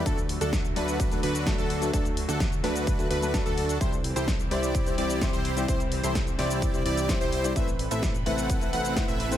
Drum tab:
HH |xxoxxxoxxxoxxxox|xxoxxxoxxxoxxxox|xxoxxxoxxxoxxxox|xxoxxxoxxxoxxxox|
SH |xx-xxx-xxx-xxx-x|xx-xxx-xxx-xxx-x|xx-xxx-xxx-xxx-x|xx-xxx-xxx-xxx-x|
SD |----o-------o---|----o-o-----o---|----o-------o---|----o-o-----o---|
BD |o---o---o---o---|o---o---o---o---|o---o---o---o---|o---o---o---o---|

HH |xxoxxxoxxxoxxxox|
SH |xx-xxx-xxx-xxx-x|
SD |----o-------o---|
BD |o---o---o---o---|